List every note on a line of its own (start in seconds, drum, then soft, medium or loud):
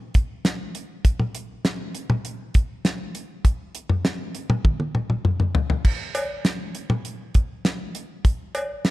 0.14 kick loud
0.14 closed hi-hat medium
0.45 snare loud
0.45 closed hi-hat medium
0.75 closed hi-hat medium
1.05 kick loud
1.05 closed hi-hat medium
1.20 mid tom medium
1.35 closed hi-hat medium
1.65 snare loud
1.65 closed hi-hat medium
1.95 closed hi-hat medium
2.10 mid tom loud
2.25 closed hi-hat medium
2.54 kick loud
2.54 closed hi-hat medium
2.85 snare loud
2.85 closed hi-hat medium
3.15 closed hi-hat medium
3.45 kick loud
3.45 closed hi-hat medium
3.75 closed hi-hat medium
3.90 mid tom medium
4.05 snare loud
4.05 closed hi-hat medium
4.35 closed hi-hat medium
4.50 mid tom loud
4.65 kick loud
4.65 high tom medium
4.80 high tom medium
4.95 mid tom medium
5.10 mid tom medium
5.25 mid tom medium
5.40 mid tom medium
5.55 floor tom loud
5.70 floor tom medium
5.85 kick loud
5.85 crash loud
6.15 closed hi-hat medium
6.15 cowbell medium
6.45 snare loud
6.45 closed hi-hat medium
6.75 closed hi-hat medium
6.90 mid tom medium
7.05 closed hi-hat medium
7.34 kick loud
7.34 closed hi-hat medium
7.65 snare loud
7.65 closed hi-hat medium
7.95 closed hi-hat medium
8.25 kick loud
8.25 closed hi-hat medium
8.55 closed hi-hat medium
8.55 cowbell medium
8.85 snare loud
8.85 closed hi-hat medium